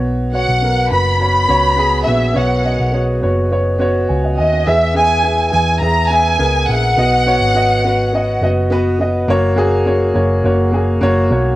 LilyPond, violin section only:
\new Staff \with { instrumentName = "Violin section" } { \time 4/4 \key b \major \tempo 4 = 104 r8 fis''4 b''8 b''4. e''8 | fis''4 r2 r8 dis''8 | e''8 gis''4 gis''8 ais''8 gis''4 fis''8~ | fis''2~ fis''8 r4. |
r1 | }